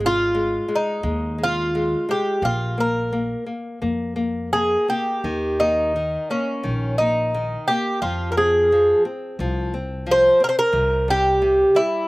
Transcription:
Already playing: upright bass G#1
0.00 nylon-string guitar G#3
0.06 bouzouki F4
0.35 nylon-string guitar G#3
0.68 nylon-string guitar G#3
0.75 bouzouki D#4
1.03 upright bass D#2, nylon-string guitar G#3
1.38 nylon-string guitar G#3
1.44 bouzouki F4
1.75 nylon-string guitar G#3
2.09 nylon-string guitar G#3, bouzouki G4
2.42 upright bass A#1, nylon-string guitar A#3, bouzouki F4
2.78 nylon-string guitar A#3, bouzouki A#4
3.13 nylon-string guitar A#3
3.46 nylon-string guitar A#3
3.82 upright bass F2, nylon-string guitar A#3
4.16 nylon-string guitar A#3
4.53 nylon-string guitar A#3, bouzouki G#4
4.88 nylon-string guitar A#3, bouzouki G4
5.24 upright bass D#2, nylon-string guitar D#3
5.60 nylon-string guitar A#3, bouzouki D#4
5.96 nylon-string guitar D#3
6.30 nylon-string guitar A#3, bouzouki C#4
6.63 upright bass A#1, nylon-string guitar D#3
6.98 nylon-string guitar A#3, bouzouki D#4
7.34 nylon-string guitar D#3
7.68 nylon-string guitar A#3, bouzouki G4
8.02 upright bass F2, nylon-string guitar F3, bouzouki F4
8.32 bouzouki A#4
8.37 nylon-string guitar C4, bouzouki G#4
8.72 nylon-string guitar F3
9.05 nylon-string guitar C4
9.39 upright bass C2, nylon-string guitar F3
9.74 nylon-string guitar C4
10.07 nylon-string guitar F3
10.11 bouzouki C5
10.40 nylon-string guitar C4, bouzouki A#4
10.49 bouzouki C5
10.59 bouzouki A#4
10.72 upright bass C2, nylon-string guitar C3
11.08 nylon-string guitar G3, bouzouki G4
11.42 nylon-string guitar C3
11.75 nylon-string guitar G3, bouzouki E4

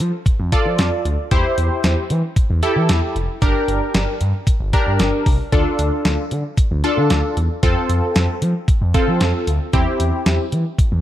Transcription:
0.00 analog synth bass F3, closed hi-hat
0.26 kick, closed hi-hat
0.39 analog synth bass F2
0.52 analog polysynth F4 A4 D5, kick, closed hi-hat
0.66 analog synth bass F3
0.79 analog synth bass F2, snare, closed hi-hat
1.05 analog synth bass D2, closed hi-hat
1.31 analog synth bass E2, analog polysynth E4 G4 C5, kick, closed hi-hat
1.58 analog synth bass E2, closed hi-hat
1.84 analog synth bass E2, snare, closed hi-hat
2.10 analog synth bass E3, closed hi-hat
2.36 kick, closed hi-hat
2.50 analog synth bass E2
2.63 analog polysynth E4 G4 A4, closed hi-hat
2.76 analog synth bass E3
2.89 analog synth bass E2, snare, closed hi-hat
3.15 analog synth bass F1, closed hi-hat
3.42 analog synth bass G1, analog polysynth D4 G4 A#4, kick, closed hi-hat
3.68 analog synth bass G1, closed hi-hat
3.94 analog synth bass G1, snare, closed hi-hat
4.21 analog synth bass G2, closed hi-hat
4.47 kick, closed hi-hat
4.60 analog synth bass G1
4.73 analog polysynth D4 G4 A#4, kick, closed hi-hat
4.87 analog synth bass G2
4.99 analog synth bass G1, snare, closed hi-hat
5.26 analog synth bass C2, kick, open hi-hat
5.52 analog synth bass D2, analog polysynth D4 F4 A4, kick, closed hi-hat
5.79 analog synth bass D2, closed hi-hat
6.05 analog synth bass D2, snare, closed hi-hat
6.31 analog synth bass D3, closed hi-hat
6.57 kick, closed hi-hat
6.71 analog synth bass D2
6.84 analog polysynth D4 F4 A4, closed hi-hat
6.97 analog synth bass D3
7.10 analog synth bass D2, snare, closed hi-hat
7.37 analog synth bass E2, closed hi-hat
7.63 analog synth bass F2, analog polysynth C4 F4 A4, kick, closed hi-hat
7.89 analog synth bass F2, closed hi-hat
8.16 analog synth bass F2, snare, closed hi-hat
8.42 analog synth bass F3, closed hi-hat
8.68 kick, closed hi-hat
8.81 analog synth bass F2
8.94 analog polysynth C4 F4 A4, kick, closed hi-hat
9.08 analog synth bass F3
9.21 analog synth bass F2, snare, closed hi-hat
9.47 analog synth bass D2, closed hi-hat
9.73 analog synth bass E2, analog polysynth C4 E4 G4, kick, closed hi-hat
10.00 analog synth bass E2, closed hi-hat
10.26 analog synth bass E2, snare, closed hi-hat
10.52 analog synth bass E3, closed hi-hat
10.79 kick, closed hi-hat
10.92 analog synth bass E2

